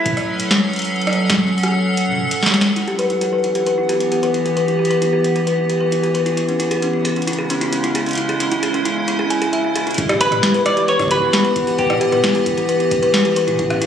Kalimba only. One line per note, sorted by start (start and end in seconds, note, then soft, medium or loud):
2.76 2.80 E4 medium
2.88 2.93 G4 medium
2.99 3.05 B4 medium
3.10 3.16 E4 medium
3.21 3.30 G4 medium
3.33 3.39 B4 medium
3.44 3.50 E4 medium
3.55 3.59 G4 medium
3.66 3.75 B4 medium
3.78 3.84 E4 medium
3.89 3.93 G4 medium
4.00 4.04 E4 medium
4.12 4.18 G4 medium
4.23 4.29 B4 medium
4.34 4.40 E4 medium
4.45 4.54 G4 medium
4.57 4.63 B4 medium
4.68 4.74 E4 medium
4.79 4.83 G4 medium
4.90 4.99 B4 medium
5.02 5.08 E4 medium
5.13 5.17 G4 medium
5.24 5.28 E4 medium
5.36 5.42 G4 medium
5.47 5.53 B4 medium
5.58 5.64 E4 medium
5.69 5.78 G4 medium
5.81 5.87 B4 medium
5.92 5.98 E4 medium
6.03 6.07 G4 medium
6.14 6.23 B4 medium
6.26 6.32 E4 loud
6.37 6.41 E4 medium
6.48 6.52 C#4 medium
6.60 6.66 E4 loud
6.71 6.77 G#4 loud
6.82 6.88 C#4 medium
6.93 7.02 E4 medium
7.05 7.11 G#4 medium
7.16 7.22 C#4 medium
7.27 7.31 E4 medium
7.39 7.48 G#4 medium
7.50 7.56 C#4 medium
7.61 7.65 E4 medium
7.73 7.76 C#4 medium
7.84 7.90 E4 loud
7.95 8.01 G#4 loud
8.06 8.12 C#4 medium
8.18 8.27 E4 medium
8.29 8.35 G#4 medium
8.40 8.46 C#4 medium
8.51 8.55 E4 loud
8.63 8.72 G#4 loud
8.74 8.80 C#4 medium
8.85 8.89 E4 medium
8.97 9.00 C#4 medium
9.08 9.14 E4 medium
9.19 9.25 G#4 medium
9.30 9.39 G#5 medium
9.42 9.51 G#4 loud
9.53 9.59 E5 medium
9.64 9.68 G#4 medium
9.76 9.81 G#4 medium
9.87 9.93 E4 medium
9.98 10.02 E4 medium
10.09 10.15 G4 loud
10.21 10.27 B4 loud
10.32 10.38 E4 medium
10.43 10.52 G4 medium
10.54 10.60 B4 loud
10.66 10.72 E4 medium
10.77 10.81 G4 medium
10.88 10.97 B4 loud
10.99 11.05 E4 loud
11.11 11.14 G4 loud
11.22 11.26 E4 medium
11.33 11.39 G4 loud
11.45 11.51 B4 loud
11.56 11.62 E4 medium
11.67 11.76 G4 medium
11.78 11.84 B4 loud
11.90 11.96 E4 medium
12.01 12.05 G4 loud
12.12 12.21 B4 loud
12.24 12.30 E4 loud
12.35 12.38 G4 loud
12.46 12.50 E4 medium
12.57 12.63 G4 medium
12.69 12.75 B4 loud
12.80 12.86 E4 medium
12.91 13.00 G4 medium
13.02 13.08 B4 loud
13.14 13.20 E4 medium
13.25 13.29 G4 loud
13.36 13.45 B4 loud
13.47 13.54 E4 loud
13.59 13.62 E4 loud
13.70 13.74 C#4 medium
13.81 13.86 E4 loud